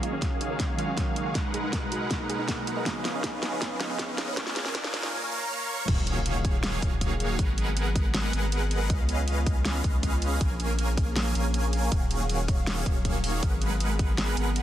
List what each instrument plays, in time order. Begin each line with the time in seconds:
Already playing: analog synth pad C#3 F#3 G#3 D#4 F5, synth keys D#3 F#3 G#3 C#4 F5, supersaw synth D#3 A#3 F#4 G#4 C#5 F5, riser
0.03 synth arpeggio sound F4, closed hi-hat
0.13 synth arpeggio sound C#4
0.22 synth arpeggio sound F#4, kick, snare, closed hi-hat
0.41 synth arpeggio sound D#4, closed hi-hat
0.50 synth arpeggio sound A#4
0.60 synth arpeggio sound C#4, kick, snare, closed hi-hat
0.76 synth keys D#3 F#3 G#3 C#4 F5, supersaw synth D#3 A#3 F#4 G#4 C#5 F5, synth arpeggio sound F4, closed hi-hat
0.88 synth arpeggio sound C#4
0.97 synth arpeggio sound F#4, kick, snare, closed hi-hat
1.16 synth arpeggio sound D#4, closed hi-hat
1.26 synth arpeggio sound A#4
1.33 synth keys B2 F#3 G#3 D#4, analog synth pad B2 F#4 A#5, supersaw synth G#3 G#4 A#4 B4 F#5, synth arpeggio sound D#4, kick, snare, closed hi-hat
1.54 synth arpeggio sound G#4, closed hi-hat
1.64 synth arpeggio sound D#4
1.73 synth arpeggio sound A#4, kick, snare, closed hi-hat
1.92 synth arpeggio sound F#4, closed hi-hat
2.01 synth arpeggio sound D#5
2.10 synth keys B2 F#3 G#3 A#3 D#4, synth arpeggio sound D#4, kick, snare, closed hi-hat
2.30 supersaw synth G#3 G#4 A#4 B4 F#5, synth arpeggio sound G#4, closed hi-hat
2.39 synth arpeggio sound D#4
2.47 synth keys B2 F#3 G#3 D#4, synth arpeggio sound A#4, kick, snare, closed hi-hat
2.67 synth arpeggio sound F#4, closed hi-hat
2.77 synth arpeggio sound D#5
2.84 synth keys C#3 F3 G#3 B3 D#4, analog synth pad C#3 F3 D#4 B4, synth arpeggio sound C#4, supersaw synth C#4 G#4 F5, kick, snare, closed hi-hat
3.05 synth arpeggio sound F4, snare, closed hi-hat
3.15 synth arpeggio sound C#4
3.24 synth arpeggio sound G#4, kick, snare, closed hi-hat
3.43 synth arpeggio sound D#4, snare, closed hi-hat
3.52 synth arpeggio sound C#5
3.62 synth arpeggio sound C#4, kick, snare, closed hi-hat
3.78 synth keys C#3 F3 G#3 B3 D#4, supersaw synth C#4 G#4 B4 D#5 F5, synth arpeggio sound F4, snare, closed hi-hat
3.90 synth arpeggio sound C#4
3.99 synth arpeggio sound G#4, kick, snare, closed hi-hat
4.18 synth arpeggio sound D#4, snare, closed hi-hat
4.28 synth arpeggio sound C#5
4.35 synth keys C#3 F3 G#3 A#3, analog synth pad G#3 F4 A#4, supersaw synth A#3 A#4 C#5 F5 G#5, synth arpeggio sound C#4, kick, snare, closed hi-hat
4.39 synth keys F4
4.47 snare
4.56 synth arpeggio sound G#4, snare, closed hi-hat
4.65 synth arpeggio sound C#4, snare
4.75 synth arpeggio sound A#4, kick, snare, closed hi-hat
4.84 snare
4.94 synth arpeggio sound F4, snare, closed hi-hat
5.03 synth arpeggio sound F5, snare
5.31 supersaw synth A#3 A#4 C#5 F5 A#5
5.69 supersaw synth A#3 A#4 C#5 F5 C#6
5.88 sub bass D#1, analog synth pad C#3 F#3 G#4 F5, supersaw synth D#3 A#3 F#4 G#4 C#5 F5, kick, closed hi-hat, crash, impact
6.07 closed hi-hat
6.26 closed hi-hat
6.45 kick, closed hi-hat
6.63 snare, closed hi-hat
6.82 sub bass D#1, supersaw synth D#3 A#3 F#4 G#4 C#5 F5, kick, closed hi-hat
7.01 kick, closed hi-hat
7.20 closed hi-hat
7.39 sub bass G#1, analog synth pad B3, kick, closed hi-hat
7.58 closed hi-hat
7.77 closed hi-hat
7.96 kick, closed hi-hat
8.14 snare, closed hi-hat
8.33 sub bass G#1, supersaw synth G#3 G#4 A#4 B4 F#5, closed hi-hat
8.52 closed hi-hat
8.71 closed hi-hat
8.90 sub bass C#2, analog synth pad D#3 C#4 F4, supersaw synth C#4 G#4 B4 D#5 F5, kick, closed hi-hat
9.09 closed hi-hat
9.28 closed hi-hat
9.46 kick, closed hi-hat
9.65 snare, closed hi-hat
9.84 sub bass C#2, supersaw synth B4, kick, closed hi-hat
10.03 kick, closed hi-hat
10.22 closed hi-hat
10.41 sub bass A#1, analog synth pad F3 A#3 G#4, supersaw synth A#3 A#4 C#5 F5 G#5, kick, closed hi-hat
10.60 closed hi-hat
10.79 closed hi-hat
10.97 kick, closed hi-hat
11.16 snare, closed hi-hat
11.35 sub bass A#1, supersaw synth A#3 A#4 C#5 F5 G#5, closed hi-hat
11.54 closed hi-hat
11.73 closed hi-hat
11.92 sub bass D#1, supersaw synth D#3 A#3 F#4 G#4 C#5 F5, analog synth pad F#3 F5, kick, closed hi-hat
12.11 closed hi-hat
12.29 closed hi-hat
12.48 kick, closed hi-hat
12.67 snare, closed hi-hat
12.86 sub bass D#1, supersaw synth D#3 A#3 F#4 C#5, kick, closed hi-hat
13.05 kick, closed hi-hat
13.24 open hi-hat
13.43 sub bass G#1, supersaw synth G#3 G#4 A#4 B4 F#5, analog synth pad B3 G#4, kick, closed hi-hat
13.62 closed hi-hat
13.80 closed hi-hat
13.99 kick, closed hi-hat
14.18 snare, closed hi-hat
14.37 sub bass G#1, supersaw synth G#3 G#4 A#4 B4 F#5, closed hi-hat
14.56 closed hi-hat